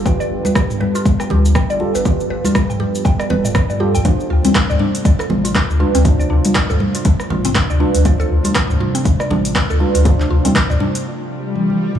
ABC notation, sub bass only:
X:1
M:4/4
L:1/16
Q:"Swing 16ths" 1/4=120
K:Ddor
V:1 name="Sub bass" clef=bass
G,,, z G,,, z2 G,,, z2 G,,, z D,,2 z G,,, z G,,,- | G,,, z G,,, z2 G,,, z2 G,,, z D,,,2 z G,,2 F,,, | z2 D,, z2 D,, z2 D,, z A,,,2 z D,, z D,,- | D,, z D,, z2 D,, z2 D,, z A,,,2 z D,, z D,,- |
D,, z D,, z2 D,, z2 D,, z A,,,2 z D,, z D,,- | D,, z D,, z2 D,, z8 z2 |]